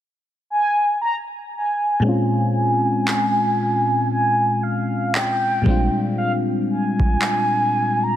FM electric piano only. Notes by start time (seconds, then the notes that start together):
2.00 A#2 G#3
2.04 C4 C#4
2.09 F4
5.62 A#2 G3 G#3
5.67 C4 D4 F4